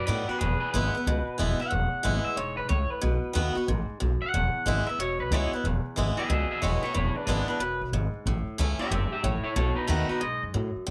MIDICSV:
0, 0, Header, 1, 5, 480
1, 0, Start_track
1, 0, Key_signature, 4, "major"
1, 0, Tempo, 326619
1, 605, Time_signature, 4, 2, 24, 8
1, 16026, End_track
2, 0, Start_track
2, 0, Title_t, "Clean electric guitar"
2, 0, Program_c, 0, 27
2, 83, Note_on_c, 0, 71, 78
2, 94, Note_on_c, 0, 74, 92
2, 388, Note_off_c, 0, 71, 0
2, 407, Note_off_c, 0, 74, 0
2, 411, Note_on_c, 0, 67, 80
2, 423, Note_on_c, 0, 71, 89
2, 551, Note_off_c, 0, 67, 0
2, 556, Note_on_c, 0, 68, 81
2, 557, Note_off_c, 0, 71, 0
2, 574, Note_on_c, 0, 71, 92
2, 865, Note_off_c, 0, 68, 0
2, 872, Note_off_c, 0, 71, 0
2, 882, Note_on_c, 0, 68, 78
2, 889, Note_on_c, 0, 71, 91
2, 1030, Note_off_c, 0, 71, 0
2, 1048, Note_on_c, 0, 71, 106
2, 1058, Note_off_c, 0, 68, 0
2, 1999, Note_off_c, 0, 71, 0
2, 2370, Note_on_c, 0, 78, 107
2, 3295, Note_off_c, 0, 78, 0
2, 3301, Note_on_c, 0, 76, 93
2, 3476, Note_off_c, 0, 76, 0
2, 3476, Note_on_c, 0, 73, 100
2, 3772, Note_off_c, 0, 73, 0
2, 3777, Note_on_c, 0, 71, 92
2, 3951, Note_off_c, 0, 71, 0
2, 3957, Note_on_c, 0, 73, 110
2, 4268, Note_off_c, 0, 73, 0
2, 4268, Note_on_c, 0, 71, 108
2, 5672, Note_off_c, 0, 71, 0
2, 6198, Note_on_c, 0, 78, 114
2, 7132, Note_off_c, 0, 78, 0
2, 7161, Note_on_c, 0, 76, 96
2, 7329, Note_off_c, 0, 76, 0
2, 7341, Note_on_c, 0, 73, 99
2, 7637, Note_off_c, 0, 73, 0
2, 7643, Note_on_c, 0, 71, 91
2, 7824, Note_off_c, 0, 71, 0
2, 7824, Note_on_c, 0, 73, 96
2, 8127, Note_off_c, 0, 73, 0
2, 8127, Note_on_c, 0, 71, 107
2, 8293, Note_off_c, 0, 71, 0
2, 9076, Note_on_c, 0, 68, 80
2, 9091, Note_on_c, 0, 76, 83
2, 9253, Note_off_c, 0, 68, 0
2, 9256, Note_off_c, 0, 76, 0
2, 9267, Note_on_c, 0, 68, 87
2, 9280, Note_on_c, 0, 76, 78
2, 9544, Note_off_c, 0, 68, 0
2, 9558, Note_off_c, 0, 76, 0
2, 9562, Note_on_c, 0, 68, 82
2, 9575, Note_on_c, 0, 76, 90
2, 9724, Note_off_c, 0, 68, 0
2, 9724, Note_off_c, 0, 76, 0
2, 9726, Note_on_c, 0, 64, 75
2, 9730, Note_on_c, 0, 73, 78
2, 10018, Note_off_c, 0, 64, 0
2, 10030, Note_off_c, 0, 73, 0
2, 10038, Note_on_c, 0, 64, 72
2, 10053, Note_on_c, 0, 73, 84
2, 10190, Note_off_c, 0, 64, 0
2, 10195, Note_off_c, 0, 73, 0
2, 10206, Note_on_c, 0, 64, 80
2, 10216, Note_on_c, 0, 73, 82
2, 10509, Note_off_c, 0, 64, 0
2, 10509, Note_on_c, 0, 62, 72
2, 10515, Note_off_c, 0, 73, 0
2, 10515, Note_on_c, 0, 71, 80
2, 10661, Note_off_c, 0, 62, 0
2, 10667, Note_off_c, 0, 71, 0
2, 10677, Note_on_c, 0, 62, 90
2, 10689, Note_on_c, 0, 71, 78
2, 10970, Note_off_c, 0, 62, 0
2, 10973, Note_off_c, 0, 71, 0
2, 10986, Note_on_c, 0, 62, 74
2, 10995, Note_on_c, 0, 71, 85
2, 11147, Note_off_c, 0, 71, 0
2, 11156, Note_off_c, 0, 62, 0
2, 11164, Note_on_c, 0, 71, 93
2, 11468, Note_off_c, 0, 71, 0
2, 12926, Note_on_c, 0, 67, 83
2, 12945, Note_on_c, 0, 76, 98
2, 13077, Note_off_c, 0, 67, 0
2, 13084, Note_off_c, 0, 76, 0
2, 13094, Note_on_c, 0, 67, 82
2, 13102, Note_on_c, 0, 76, 87
2, 13380, Note_off_c, 0, 67, 0
2, 13396, Note_off_c, 0, 76, 0
2, 13404, Note_on_c, 0, 67, 77
2, 13415, Note_on_c, 0, 76, 89
2, 13560, Note_off_c, 0, 67, 0
2, 13560, Note_on_c, 0, 64, 82
2, 13568, Note_off_c, 0, 76, 0
2, 13568, Note_on_c, 0, 73, 93
2, 13850, Note_off_c, 0, 64, 0
2, 13860, Note_off_c, 0, 73, 0
2, 13868, Note_on_c, 0, 64, 73
2, 13878, Note_on_c, 0, 73, 86
2, 14034, Note_off_c, 0, 64, 0
2, 14040, Note_off_c, 0, 73, 0
2, 14049, Note_on_c, 0, 69, 78
2, 14058, Note_on_c, 0, 73, 91
2, 14333, Note_on_c, 0, 63, 78
2, 14336, Note_off_c, 0, 69, 0
2, 14348, Note_on_c, 0, 71, 85
2, 14353, Note_off_c, 0, 73, 0
2, 14488, Note_off_c, 0, 63, 0
2, 14491, Note_off_c, 0, 71, 0
2, 14503, Note_on_c, 0, 63, 93
2, 14514, Note_on_c, 0, 71, 79
2, 14803, Note_off_c, 0, 63, 0
2, 14817, Note_off_c, 0, 71, 0
2, 14822, Note_on_c, 0, 63, 79
2, 14836, Note_on_c, 0, 71, 87
2, 14990, Note_off_c, 0, 63, 0
2, 14997, Note_on_c, 0, 75, 98
2, 15004, Note_off_c, 0, 71, 0
2, 15300, Note_off_c, 0, 75, 0
2, 16026, End_track
3, 0, Start_track
3, 0, Title_t, "Steel-string acoustic guitar"
3, 0, Program_c, 1, 25
3, 0, Note_on_c, 1, 42, 95
3, 100, Note_on_c, 1, 51, 92
3, 114, Note_on_c, 1, 57, 88
3, 119, Note_on_c, 1, 59, 86
3, 131, Note_on_c, 1, 66, 90
3, 408, Note_off_c, 1, 51, 0
3, 408, Note_off_c, 1, 66, 0
3, 415, Note_off_c, 1, 57, 0
3, 417, Note_off_c, 1, 59, 0
3, 426, Note_on_c, 1, 66, 65
3, 454, Note_on_c, 1, 59, 49
3, 568, Note_off_c, 1, 42, 0
3, 595, Note_off_c, 1, 66, 0
3, 600, Note_on_c, 1, 40, 96
3, 609, Note_off_c, 1, 59, 0
3, 1083, Note_on_c, 1, 52, 92
3, 1097, Note_on_c, 1, 56, 93
3, 1102, Note_on_c, 1, 59, 95
3, 1115, Note_on_c, 1, 64, 99
3, 1372, Note_off_c, 1, 64, 0
3, 1380, Note_off_c, 1, 52, 0
3, 1387, Note_off_c, 1, 56, 0
3, 1390, Note_off_c, 1, 59, 0
3, 1390, Note_on_c, 1, 64, 63
3, 1427, Note_on_c, 1, 59, 46
3, 1530, Note_off_c, 1, 40, 0
3, 1558, Note_off_c, 1, 64, 0
3, 1576, Note_off_c, 1, 59, 0
3, 1576, Note_on_c, 1, 47, 94
3, 2025, Note_on_c, 1, 52, 85
3, 2043, Note_on_c, 1, 56, 84
3, 2048, Note_on_c, 1, 59, 97
3, 2061, Note_on_c, 1, 64, 96
3, 2327, Note_off_c, 1, 64, 0
3, 2332, Note_off_c, 1, 52, 0
3, 2341, Note_off_c, 1, 56, 0
3, 2343, Note_off_c, 1, 59, 0
3, 2344, Note_on_c, 1, 64, 62
3, 2382, Note_on_c, 1, 59, 48
3, 2499, Note_off_c, 1, 47, 0
3, 2507, Note_on_c, 1, 40, 89
3, 2516, Note_off_c, 1, 64, 0
3, 2535, Note_off_c, 1, 59, 0
3, 2984, Note_on_c, 1, 52, 92
3, 2988, Note_on_c, 1, 56, 86
3, 3002, Note_on_c, 1, 59, 101
3, 3011, Note_on_c, 1, 64, 94
3, 3445, Note_off_c, 1, 40, 0
3, 3460, Note_off_c, 1, 52, 0
3, 3462, Note_off_c, 1, 56, 0
3, 3469, Note_off_c, 1, 59, 0
3, 3473, Note_off_c, 1, 64, 0
3, 3487, Note_on_c, 1, 44, 98
3, 3952, Note_off_c, 1, 44, 0
3, 3953, Note_on_c, 1, 45, 91
3, 4425, Note_off_c, 1, 45, 0
3, 4431, Note_on_c, 1, 47, 100
3, 4899, Note_on_c, 1, 51, 96
3, 4922, Note_on_c, 1, 57, 100
3, 4926, Note_on_c, 1, 59, 107
3, 4936, Note_on_c, 1, 66, 102
3, 5203, Note_off_c, 1, 66, 0
3, 5211, Note_off_c, 1, 51, 0
3, 5220, Note_on_c, 1, 66, 59
3, 5223, Note_off_c, 1, 57, 0
3, 5224, Note_off_c, 1, 59, 0
3, 5251, Note_on_c, 1, 59, 53
3, 5368, Note_off_c, 1, 47, 0
3, 5397, Note_off_c, 1, 66, 0
3, 5412, Note_off_c, 1, 59, 0
3, 5413, Note_on_c, 1, 44, 98
3, 5875, Note_off_c, 1, 44, 0
3, 5881, Note_on_c, 1, 42, 85
3, 6351, Note_off_c, 1, 42, 0
3, 6376, Note_on_c, 1, 40, 93
3, 6844, Note_on_c, 1, 52, 87
3, 6858, Note_on_c, 1, 56, 100
3, 6875, Note_on_c, 1, 59, 96
3, 6880, Note_on_c, 1, 64, 100
3, 7133, Note_off_c, 1, 64, 0
3, 7145, Note_off_c, 1, 52, 0
3, 7150, Note_on_c, 1, 64, 61
3, 7152, Note_off_c, 1, 56, 0
3, 7160, Note_off_c, 1, 59, 0
3, 7191, Note_on_c, 1, 59, 54
3, 7302, Note_off_c, 1, 40, 0
3, 7323, Note_off_c, 1, 64, 0
3, 7343, Note_off_c, 1, 59, 0
3, 7346, Note_on_c, 1, 47, 103
3, 7813, Note_on_c, 1, 52, 92
3, 7828, Note_on_c, 1, 56, 96
3, 7839, Note_on_c, 1, 59, 88
3, 7849, Note_on_c, 1, 64, 110
3, 8110, Note_off_c, 1, 52, 0
3, 8115, Note_off_c, 1, 64, 0
3, 8117, Note_off_c, 1, 56, 0
3, 8123, Note_off_c, 1, 59, 0
3, 8132, Note_on_c, 1, 64, 69
3, 8165, Note_on_c, 1, 59, 52
3, 8267, Note_off_c, 1, 47, 0
3, 8294, Note_off_c, 1, 64, 0
3, 8302, Note_on_c, 1, 40, 91
3, 8310, Note_off_c, 1, 59, 0
3, 8760, Note_on_c, 1, 52, 92
3, 8778, Note_on_c, 1, 56, 94
3, 8784, Note_on_c, 1, 59, 100
3, 8794, Note_on_c, 1, 64, 101
3, 9051, Note_off_c, 1, 64, 0
3, 9064, Note_off_c, 1, 52, 0
3, 9068, Note_on_c, 1, 64, 61
3, 9073, Note_off_c, 1, 56, 0
3, 9076, Note_off_c, 1, 59, 0
3, 9104, Note_on_c, 1, 59, 47
3, 9225, Note_off_c, 1, 40, 0
3, 9242, Note_off_c, 1, 64, 0
3, 9255, Note_on_c, 1, 47, 95
3, 9260, Note_off_c, 1, 59, 0
3, 9726, Note_on_c, 1, 52, 85
3, 9739, Note_on_c, 1, 56, 85
3, 9749, Note_on_c, 1, 59, 98
3, 9760, Note_on_c, 1, 64, 93
3, 10014, Note_off_c, 1, 64, 0
3, 10027, Note_off_c, 1, 52, 0
3, 10032, Note_on_c, 1, 64, 56
3, 10033, Note_off_c, 1, 56, 0
3, 10038, Note_off_c, 1, 59, 0
3, 10071, Note_on_c, 1, 59, 45
3, 10182, Note_off_c, 1, 47, 0
3, 10204, Note_off_c, 1, 64, 0
3, 10206, Note_on_c, 1, 40, 95
3, 10224, Note_off_c, 1, 59, 0
3, 10682, Note_on_c, 1, 52, 92
3, 10696, Note_on_c, 1, 56, 87
3, 10706, Note_on_c, 1, 59, 101
3, 10721, Note_on_c, 1, 64, 106
3, 10974, Note_off_c, 1, 64, 0
3, 10985, Note_off_c, 1, 52, 0
3, 10992, Note_off_c, 1, 56, 0
3, 10992, Note_on_c, 1, 64, 64
3, 10996, Note_off_c, 1, 59, 0
3, 11021, Note_on_c, 1, 59, 54
3, 11137, Note_off_c, 1, 40, 0
3, 11164, Note_off_c, 1, 64, 0
3, 11174, Note_on_c, 1, 42, 93
3, 11179, Note_off_c, 1, 59, 0
3, 11638, Note_off_c, 1, 42, 0
3, 11658, Note_on_c, 1, 44, 91
3, 12120, Note_off_c, 1, 44, 0
3, 12150, Note_on_c, 1, 45, 97
3, 12613, Note_on_c, 1, 52, 93
3, 12624, Note_on_c, 1, 57, 99
3, 12636, Note_on_c, 1, 61, 92
3, 12647, Note_on_c, 1, 64, 94
3, 12904, Note_off_c, 1, 64, 0
3, 12909, Note_off_c, 1, 52, 0
3, 12914, Note_off_c, 1, 57, 0
3, 12920, Note_off_c, 1, 61, 0
3, 12921, Note_on_c, 1, 64, 66
3, 12962, Note_on_c, 1, 61, 47
3, 13067, Note_off_c, 1, 45, 0
3, 13088, Note_off_c, 1, 64, 0
3, 13102, Note_on_c, 1, 44, 94
3, 13108, Note_off_c, 1, 61, 0
3, 13560, Note_off_c, 1, 44, 0
3, 13579, Note_on_c, 1, 45, 85
3, 14038, Note_off_c, 1, 45, 0
3, 14050, Note_on_c, 1, 47, 95
3, 14512, Note_on_c, 1, 51, 86
3, 14520, Note_on_c, 1, 57, 97
3, 14539, Note_on_c, 1, 59, 93
3, 14545, Note_on_c, 1, 66, 92
3, 14814, Note_off_c, 1, 66, 0
3, 14816, Note_off_c, 1, 51, 0
3, 14820, Note_off_c, 1, 57, 0
3, 14830, Note_off_c, 1, 59, 0
3, 14831, Note_on_c, 1, 66, 65
3, 14858, Note_on_c, 1, 59, 47
3, 14975, Note_off_c, 1, 47, 0
3, 15000, Note_off_c, 1, 66, 0
3, 15003, Note_on_c, 1, 44, 94
3, 15014, Note_off_c, 1, 59, 0
3, 15468, Note_off_c, 1, 44, 0
3, 15490, Note_on_c, 1, 42, 86
3, 15951, Note_off_c, 1, 42, 0
3, 15968, Note_on_c, 1, 40, 91
3, 16026, Note_off_c, 1, 40, 0
3, 16026, End_track
4, 0, Start_track
4, 0, Title_t, "Upright bass"
4, 0, Program_c, 2, 32
4, 124, Note_on_c, 2, 45, 90
4, 406, Note_off_c, 2, 45, 0
4, 601, Note_on_c, 2, 28, 95
4, 885, Note_off_c, 2, 28, 0
4, 1084, Note_on_c, 2, 32, 100
4, 1367, Note_off_c, 2, 32, 0
4, 1565, Note_on_c, 2, 37, 94
4, 1848, Note_off_c, 2, 37, 0
4, 2044, Note_on_c, 2, 28, 89
4, 2327, Note_off_c, 2, 28, 0
4, 2528, Note_on_c, 2, 28, 98
4, 2810, Note_off_c, 2, 28, 0
4, 3008, Note_on_c, 2, 32, 98
4, 3291, Note_off_c, 2, 32, 0
4, 3480, Note_on_c, 2, 28, 92
4, 3767, Note_off_c, 2, 28, 0
4, 3796, Note_on_c, 2, 35, 91
4, 3956, Note_off_c, 2, 35, 0
4, 3970, Note_on_c, 2, 37, 91
4, 4252, Note_off_c, 2, 37, 0
4, 4454, Note_on_c, 2, 35, 101
4, 4735, Note_off_c, 2, 35, 0
4, 4928, Note_on_c, 2, 39, 100
4, 5212, Note_off_c, 2, 39, 0
4, 5409, Note_on_c, 2, 33, 94
4, 5693, Note_off_c, 2, 33, 0
4, 5901, Note_on_c, 2, 35, 89
4, 6180, Note_off_c, 2, 35, 0
4, 6373, Note_on_c, 2, 28, 94
4, 6655, Note_off_c, 2, 28, 0
4, 6845, Note_on_c, 2, 32, 99
4, 7131, Note_off_c, 2, 32, 0
4, 7324, Note_on_c, 2, 28, 100
4, 7611, Note_off_c, 2, 28, 0
4, 7628, Note_on_c, 2, 35, 100
4, 7793, Note_off_c, 2, 35, 0
4, 7801, Note_on_c, 2, 37, 94
4, 8089, Note_off_c, 2, 37, 0
4, 8285, Note_on_c, 2, 28, 94
4, 8572, Note_off_c, 2, 28, 0
4, 8779, Note_on_c, 2, 32, 96
4, 9060, Note_off_c, 2, 32, 0
4, 9254, Note_on_c, 2, 37, 93
4, 9537, Note_off_c, 2, 37, 0
4, 9735, Note_on_c, 2, 28, 87
4, 10017, Note_off_c, 2, 28, 0
4, 10218, Note_on_c, 2, 28, 101
4, 10499, Note_off_c, 2, 28, 0
4, 10682, Note_on_c, 2, 32, 93
4, 10971, Note_off_c, 2, 32, 0
4, 11165, Note_on_c, 2, 28, 85
4, 11452, Note_off_c, 2, 28, 0
4, 11484, Note_on_c, 2, 35, 97
4, 11635, Note_off_c, 2, 35, 0
4, 11644, Note_on_c, 2, 32, 86
4, 11931, Note_off_c, 2, 32, 0
4, 12133, Note_on_c, 2, 33, 103
4, 12415, Note_off_c, 2, 33, 0
4, 12626, Note_on_c, 2, 37, 90
4, 12902, Note_off_c, 2, 37, 0
4, 13090, Note_on_c, 2, 30, 98
4, 13373, Note_off_c, 2, 30, 0
4, 13570, Note_on_c, 2, 33, 86
4, 13853, Note_off_c, 2, 33, 0
4, 14048, Note_on_c, 2, 35, 93
4, 14331, Note_off_c, 2, 35, 0
4, 14532, Note_on_c, 2, 39, 96
4, 14813, Note_off_c, 2, 39, 0
4, 15020, Note_on_c, 2, 35, 90
4, 15296, Note_off_c, 2, 35, 0
4, 15330, Note_on_c, 2, 42, 91
4, 15482, Note_off_c, 2, 42, 0
4, 15499, Note_on_c, 2, 45, 92
4, 15775, Note_off_c, 2, 45, 0
4, 16026, End_track
5, 0, Start_track
5, 0, Title_t, "Muted upright bass strokes"
5, 425, Note_on_c, 9, 29, 75
5, 572, Note_off_c, 9, 29, 0
5, 915, Note_on_c, 9, 29, 78
5, 1062, Note_off_c, 9, 29, 0
5, 1868, Note_on_c, 9, 29, 76
5, 2015, Note_off_c, 9, 29, 0
5, 2354, Note_on_c, 9, 29, 74
5, 2501, Note_off_c, 9, 29, 0
5, 2841, Note_on_c, 9, 29, 72
5, 2988, Note_off_c, 9, 29, 0
5, 4284, Note_on_c, 9, 29, 75
5, 4431, Note_off_c, 9, 29, 0
5, 4759, Note_on_c, 9, 29, 74
5, 4906, Note_off_c, 9, 29, 0
5, 5235, Note_on_c, 9, 29, 75
5, 5382, Note_off_c, 9, 29, 0
5, 5723, Note_on_c, 9, 29, 78
5, 5870, Note_off_c, 9, 29, 0
5, 6201, Note_on_c, 9, 29, 75
5, 6348, Note_off_c, 9, 29, 0
5, 6682, Note_on_c, 9, 29, 74
5, 6829, Note_off_c, 9, 29, 0
5, 7158, Note_on_c, 9, 29, 81
5, 7305, Note_off_c, 9, 29, 0
5, 8122, Note_on_c, 9, 29, 73
5, 8269, Note_off_c, 9, 29, 0
5, 8607, Note_on_c, 9, 29, 73
5, 8754, Note_off_c, 9, 29, 0
5, 9076, Note_on_c, 9, 29, 72
5, 9223, Note_off_c, 9, 29, 0
5, 9565, Note_on_c, 9, 29, 74
5, 9712, Note_off_c, 9, 29, 0
5, 10036, Note_on_c, 9, 29, 74
5, 10183, Note_off_c, 9, 29, 0
5, 10511, Note_on_c, 9, 29, 76
5, 10658, Note_off_c, 9, 29, 0
5, 10992, Note_on_c, 9, 29, 76
5, 11139, Note_off_c, 9, 29, 0
5, 11956, Note_on_c, 9, 29, 74
5, 12103, Note_off_c, 9, 29, 0
5, 12450, Note_on_c, 9, 29, 74
5, 12597, Note_off_c, 9, 29, 0
5, 12919, Note_on_c, 9, 29, 75
5, 13066, Note_off_c, 9, 29, 0
5, 13402, Note_on_c, 9, 29, 74
5, 13549, Note_off_c, 9, 29, 0
5, 13878, Note_on_c, 9, 29, 73
5, 14025, Note_off_c, 9, 29, 0
5, 14368, Note_on_c, 9, 29, 76
5, 14515, Note_off_c, 9, 29, 0
5, 14837, Note_on_c, 9, 29, 79
5, 14984, Note_off_c, 9, 29, 0
5, 15812, Note_on_c, 9, 29, 71
5, 15959, Note_off_c, 9, 29, 0
5, 16026, End_track
0, 0, End_of_file